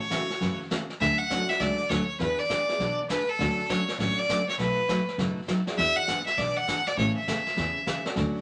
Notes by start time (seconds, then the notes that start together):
0.00 C#5
0.10 C#3 E3 A3 C#4 E4 F#4, kick, snare, hi-hat pedal
0.30 snare
0.41 F#2 C#3 E3 A3 C#4 F#4, brush sweep, kick, snare
0.71 C#3 E3 A3 C#4 F#4, kick, snare, hi-hat pedal
0.90 snare
1.01 D2 D3 F#3 A3 C#4 F#4 E5, brush sweep, kick, snare
1.19 F#5
1.30 D3 F#3 A3 C#4 D4 E4 F#4, kick, snare, hi-hat pedal
1.49 E5, snare
1.60 C#2 D3 F#3 A3 C#4 F#4 D5, brush sweep, kick, snare
1.90 D2 D3 F#3 A3 C#4 F#4 C#5, kick, snare, hi-hat pedal
2.20 E2 E3 B3 D4 G#4 B4, brush sweep, kick, snare
2.39 D5
2.49 E3 B3 D4 G#4, kick, snare, hi-hat pedal
2.68 B3 D4 E4 G#4, snare
2.80 B1 E3 B3 D4 G#4, brush sweep, kick, snare
3.09 E3 B3 D4 G#4 B4, kick, snare, hi-hat pedal
3.29 A4
3.39 D2 D3 F#3 A3 C#4 D4 F#4 A4, brush sweep, kick, snare
3.69 D3 F#3 A3 C#4 F#4 C#5, kick, snare, hi-hat pedal
3.88 snare
3.99 A1 D3 F#3 A3 C#4 F#4 C#5, brush sweep, kick, snare
4.19 D5
4.29 D3 F#3 A3 C#4 F#4, kick, snare, hi-hat pedal
4.48 C#5, snare
4.59 B1 B2 F#3 A3 D#4 F#4 B4, brush sweep, kick, snare
4.89 B2 F#3 A3 D#4 F#4, kick, snare, hi-hat pedal
5.08 snare
5.18 F#1 B2 F#3 A3 D#4 F#4, brush sweep, kick, snare
5.48 B2 F#3 A3 D#4 F#4, kick, snare, hi-hat pedal
5.66 D4 E4 F#4 G#4, snare
5.78 E2 E3 B3 D4 G#4 E5, brush sweep, kick, snare
5.97 F#5
6.08 E3 B3 D4 G#4, kick, snare, hi-hat pedal
6.26 E5, snare
6.38 B1 E3 B3 D4 G#4 D5, brush sweep, kick, snare
6.57 F#5
6.68 E3 B3 D4 G#4, kick, snare, hi-hat pedal
6.87 D5, snare
6.98 A1 C#3 E3 A3 C#4 G#4 C#5, brush sweep, kick, snare
7.17 E5
7.28 C#3 E3 A3 C#4 G#4, kick, snare, hi-hat pedal
7.46 snare
7.57 E2 C#3 E3 A3 C#4 G#4, brush sweep, kick, snare
7.87 C#3 E3 A3 C#4 G#4, kick, snare, hi-hat pedal
8.04 C#4 D4 F#4 A4, snare
8.16 D2 D3 F#3 A3 C#4 F#4, brush sweep, kick, snare